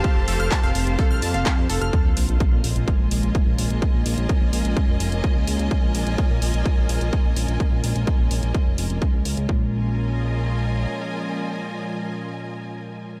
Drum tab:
HH |x-oxx-oxx-oxx-ox|x-oxx-oxx-oxx-ox|x-oxx-oxx-oxx-ox|x-oxx-oxx-oxx-ox|
CP |----x-------x---|----------------|----------------|----------------|
BD |o---o---o---o---|o---o---o---o---|o---o---o---o---|o---o---o---o---|

HH |x-oxx-oxx-oxx-ox|----------------|----------------|
CP |----------------|----------------|----------------|
BD |o---o---o---o---|o---------------|----------------|